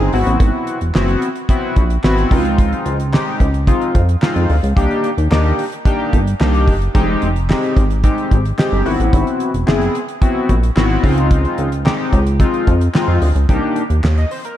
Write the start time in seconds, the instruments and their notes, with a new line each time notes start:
Already playing: analog polysynth G#3 C4 D#4 G#4
0.00 analog synth bass G1
0.13 analog synth bass G#1, analog polysynth B3 C4 E4 F#4, open hi-hat
0.27 analog synth bass A1, closed hi-hat
0.40 analog synth bass G#1, kick, closed hi-hat
0.67 closed hi-hat
0.81 analog synth bass E1, closed hi-hat
0.95 analog synth bass F#1, analog polysynth B3 C4 E4 F#4, snare, clap
1.08 closed hi-hat
1.22 closed hi-hat
1.35 closed hi-hat
1.49 analog polysynth B3 C4 E4 F#4, kick, closed hi-hat
1.76 analog synth bass A#1, kick, closed hi-hat
1.90 closed hi-hat
2.04 analog synth bass G#1, analog polysynth B3 C4 E4 F#4, snare, clap
2.18 closed hi-hat
2.31 analog synth bass C#2, analog polysynth G#3 C4 D#4 F4, kick, open hi-hat
2.45 closed hi-hat
2.58 kick, closed hi-hat
2.73 closed hi-hat
2.86 analog synth bass C#2, closed hi-hat
3.00 closed hi-hat
3.13 analog polysynth G#3 C4 D#4 G4, snare, clap
3.40 analog synth bass C#2, kick, closed hi-hat
3.54 closed hi-hat
3.67 analog polysynth G#3 C4 D#4 F4, kick, closed hi-hat
3.81 closed hi-hat
3.95 analog synth bass F2, kick, closed hi-hat
4.09 closed hi-hat
4.22 analog polysynth G#3 C4 D#4 F4, snare, clap
4.36 analog synth bass F2, closed hi-hat
4.49 analog synth bass D2, open hi-hat
4.63 analog synth bass C#2, closed hi-hat
4.76 analog synth bass C2, analog polysynth A#3 D4 D#4 G4, kick, closed hi-hat
4.91 closed hi-hat
5.04 closed hi-hat
5.18 analog synth bass D#2, closed hi-hat
5.31 analog synth bass D#2, analog polysynth A#3 D4 D#4 G4, snare, clap
5.59 open hi-hat
5.72 closed hi-hat
5.85 analog polysynth A#3 D4 D#4 G4, kick, closed hi-hat
6.13 analog synth bass G1, kick, closed hi-hat
6.27 closed hi-hat
6.40 analog synth bass C2, analog polysynth A#3 D4 D#4 G4, snare, clap
6.54 closed hi-hat
6.68 analog synth bass F#1, kick, open hi-hat
6.82 closed hi-hat
6.94 analog synth bass F1, analog polysynth G#3 C4 D#4 G4, kick, closed hi-hat
7.22 analog synth bass F1, closed hi-hat
7.36 closed hi-hat
7.49 analog polysynth G#3 C4 D#4 G4, snare, clap
7.63 closed hi-hat
7.77 analog synth bass G#1, kick, closed hi-hat
7.90 closed hi-hat
8.04 analog polysynth G#3 C4 D#4 G4, kick, closed hi-hat
8.18 closed hi-hat
8.31 analog synth bass G#1, kick, closed hi-hat
8.45 closed hi-hat
8.58 analog polysynth G#3 C4 D#4 G4, snare, clap
8.72 analog synth bass G1
8.85 analog synth bass G#1, analog polysynth B3 C4 E4 F#4, open hi-hat
9.00 analog synth bass A1, closed hi-hat
9.13 analog synth bass G#1, kick, closed hi-hat
9.27 closed hi-hat
9.40 closed hi-hat
9.54 analog synth bass E1, closed hi-hat
9.67 analog synth bass F#1, analog polysynth B3 C4 E4 G#4, snare, clap
9.81 closed hi-hat
9.95 closed hi-hat
10.08 closed hi-hat
10.21 analog polysynth B3 C4 E4 F#4, kick, closed hi-hat
10.49 analog synth bass A#1, kick, closed hi-hat
10.63 closed hi-hat
10.76 analog synth bass G#1, analog polysynth B3 C4 E4 F#4, snare, clap
11.03 analog synth bass C#2, analog polysynth G#3 C4 D#4 F4, kick, open hi-hat
11.18 closed hi-hat
11.31 kick, closed hi-hat
11.45 closed hi-hat
11.58 analog synth bass C#2, closed hi-hat
11.72 closed hi-hat
11.85 analog polysynth G#3 C4 D#4 G4, snare, clap
12.13 analog synth bass C#2, kick, closed hi-hat
12.27 closed hi-hat
12.40 analog polysynth G#3 C4 D#4 F4, kick, closed hi-hat
12.54 closed hi-hat
12.67 analog synth bass F2, kick, closed hi-hat
12.81 closed hi-hat
12.94 analog polysynth G#3 C4 D#4 F4, snare, clap
13.08 analog synth bass F2
13.22 analog synth bass D2, open hi-hat
13.35 analog synth bass C#2, closed hi-hat
13.49 analog synth bass C2, analog polysynth A#3 D4 D#4 G4, kick, closed hi-hat
13.76 closed hi-hat
13.90 analog synth bass D#2, closed hi-hat
14.04 analog synth bass D#2, snare, clap
14.17 analog polysynth D#5, closed hi-hat
14.31 analog polysynth C5, open hi-hat
14.44 analog polysynth A#4, closed hi-hat